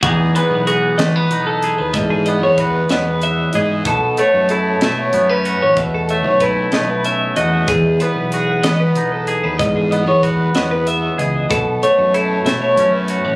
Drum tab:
HH |xxxxxx|xxxxxx|xxxxxx|xxxxxx|
SD |---o--|---o--|---o--|---o--|
BD |o-----|o-o---|o-----|o-o---|

HH |xxxxxx|xxxxxx|xxxxxx|
SD |---o--|---o--|---o--|
BD |o-----|o-o---|o-----|